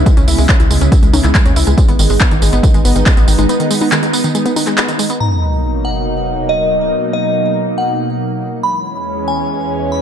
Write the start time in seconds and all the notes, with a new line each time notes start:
Already playing: C#3 G#3 B3 E4
0.06 G#3, kick, closed hi-hat, tambourine
0.17 C#2 C#4, closed hi-hat, tambourine
0.28 C#2 E4, open hi-hat, tambourine
0.38 C#2 G#3, open hi-hat, tambourine
0.49 C#4, kick, clap, closed hi-hat, tambourine
0.60 C#2 E4, closed hi-hat, tambourine
0.71 C#2 G#3, open hi-hat, tambourine
0.81 C#2 C#4, closed hi-hat, tambourine
0.92 E4, kick, closed hi-hat, tambourine
1.03 C#2 G#3, closed hi-hat, tambourine
1.13 C#2 C#4, open hi-hat, tambourine, high conga
1.24 C#2 E4, clap, closed hi-hat, tambourine
1.35 G#3, kick, clap, closed hi-hat, tambourine
1.46 D#2 C#4, closed hi-hat, tambourine
1.56 C#2 E4, open hi-hat, tambourine
1.67 C#2 G#3, closed hi-hat, tambourine
1.78 G#3 B3 D#4, kick, closed hi-hat, tambourine
1.88 G#1 B3, closed hi-hat, tambourine
1.99 G#1 D#3, open hi-hat, tambourine
2.10 G#1 G#3, open hi-hat, tambourine
2.21 B3, kick, clap, closed hi-hat, tambourine
2.31 G#1 D#3, closed hi-hat, tambourine
2.42 G#1 G#3, open hi-hat, tambourine
2.53 G#1 B3, closed hi-hat, tambourine
2.63 D#3, kick, closed hi-hat, tambourine
2.74 G#1 G#3, closed hi-hat, tambourine
2.85 G#1 B3, open hi-hat, tambourine
2.96 G#1 D#3, closed hi-hat, tambourine
3.06 G#3, kick, clap, closed hi-hat, tambourine
3.17 A#1 B3, closed hi-hat, tambourine
3.28 G#1 D#3, open hi-hat, tambourine
3.38 G#1 G#3, closed hi-hat, tambourine, high conga
3.49 B3, closed hi-hat, tambourine
3.60 D#3, closed hi-hat, tambourine
3.71 G#3, open hi-hat, tambourine
3.81 B3, open hi-hat, tambourine, high conga
3.92 D#3, clap, closed hi-hat, tambourine
4.03 G#3, closed hi-hat, tambourine
4.13 B3, open hi-hat, tambourine
4.24 D#3, closed hi-hat, tambourine
4.35 G#3, closed hi-hat, tambourine
4.46 B3, closed hi-hat, tambourine
4.56 D#3, open hi-hat, tambourine, high conga
4.67 G#3, clap, closed hi-hat, tambourine
4.78 B3, clap, closed hi-hat, tambourine
4.88 D#3, closed hi-hat, tambourine
4.99 G#3, open hi-hat, tambourine
5.10 B3, closed hi-hat, tambourine
5.20 B2 F#3 A#3 D#4 A#5, sub drop
5.85 F#5
6.49 D#5
7.13 D#5
7.78 F#5
8.63 E2 E3 G#3 C#4 B5
9.28 G#5
9.92 B5